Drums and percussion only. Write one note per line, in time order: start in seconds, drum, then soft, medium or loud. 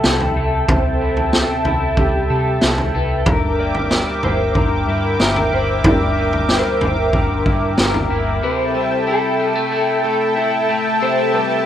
0.04 snare loud
0.20 floor tom medium
0.69 kick medium
0.69 floor tom loud
1.17 floor tom medium
1.33 snare loud
1.65 floor tom medium
1.97 kick medium
1.97 floor tom medium
2.61 snare loud
2.78 floor tom medium
3.26 kick loud
3.26 floor tom loud
3.75 floor tom medium
3.91 snare loud
4.23 floor tom medium
4.55 kick medium
4.55 floor tom medium
5.20 snare loud
5.36 floor tom medium
5.84 kick medium
5.84 floor tom loud
6.33 floor tom medium
6.49 snare loud
6.81 floor tom medium
7.13 kick medium
7.13 floor tom medium
7.46 kick medium
7.78 snare loud
7.94 floor tom medium